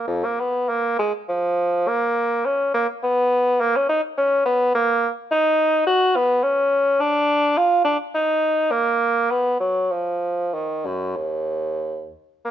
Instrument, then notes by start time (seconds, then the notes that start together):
bassoon
0.07 F2
0.25 A#3
0.40 B3
0.69 A#3
0.99 G#3
1.29 F3
1.88 A#3
2.46 C#4
2.74 A#3
3.03 B3
3.61 A#3
3.76 C#4
3.89 D#4
4.18 C#4
4.46 B3
4.75 A#3
5.31 D#4
5.87 F#4
6.16 B3
6.44 C#4
7.00 D4
7.58 F4
7.85 D4
8.15 D#4
8.71 A#3
9.31 B3
9.60 F#3
9.91 F3
10.54 D#3
10.86 F#2
11.16 D#2
12.45 A#3